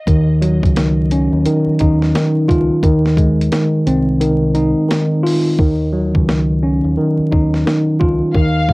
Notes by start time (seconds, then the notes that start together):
0.07 D#2 D#3, kick, closed hi-hat
0.41 F#3, closed hi-hat
0.63 C#2, kick, closed hi-hat
0.76 D#3, snare, closed hi-hat
1.11 C#4, closed hi-hat
1.32 D#2
1.45 D#3, closed hi-hat
1.67 muted fingered electric bass stroke
1.79 D#2 D#4, kick, closed hi-hat
2.02 snare
2.15 D#3, snare, closed hi-hat
2.48 C#2 F4, kick, closed hi-hat
2.83 D#2 D#3, kick, closed hi-hat
3.06 snare
3.17 G#3, kick, closed hi-hat
3.41 closed hi-hat
3.52 D#3, snare, closed hi-hat
3.87 C2 C4, closed hi-hat
4.21 D#3, closed hi-hat
4.55 D#4, closed hi-hat
4.89 D#3, snare, closed hi-hat
5.24 F4, open hi-hat
5.59 D#2 D#3, kick
5.93 F#3
6.15 C#2, kick
6.28 D#3, snare
6.63 C#4
6.84 D#2
6.97 D#3
7.18 muted fingered electric bass stroke
7.31 D#2 D#4, kick
7.54 snare
7.66 D#3, snare
8.00 C#2 F4, kick
8.35 D#2 D#3 F5, kick
8.69 G#3, kick